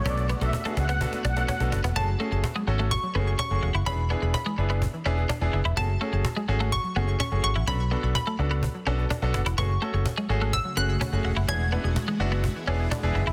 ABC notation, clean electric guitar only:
X:1
M:4/4
L:1/16
Q:1/4=126
K:F#m
V:1 name="Clean electric guitar"
C z B, z2 A, z B, z2 D z C z2 B, | B, z A, z2 G, z A, z2 B, z C z2 E | C z B, z2 G, z B, z2 C z D z2 E | B, z A, z2 G, z A, z2 B, z C z2 E |
C z B, z2 A, z B, z2 C z D z2 E | B, z A, z2 G, z A, z2 B, z C z2 E | C z B, z2 G, z B, z2 C z D z2 E |]